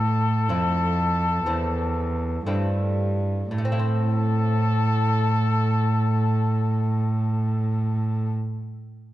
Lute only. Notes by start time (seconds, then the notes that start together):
Already playing: A2
0.49 F2 A3 C4 E4
1.46 E2 A3 C4 E4
2.46 G2 A3 C4 E4
3.51 A2
3.58 A3
3.65 C4
3.72 E4
3.79 C5